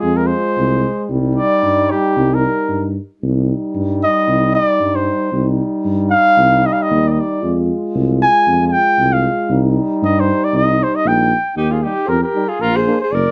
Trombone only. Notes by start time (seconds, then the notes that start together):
Already playing: G#3
1.09 G3
3.22 G3
5.33 G3
7.42 G#3
9.50 G3
11.84 G3
12.35 G3
12.86 A#3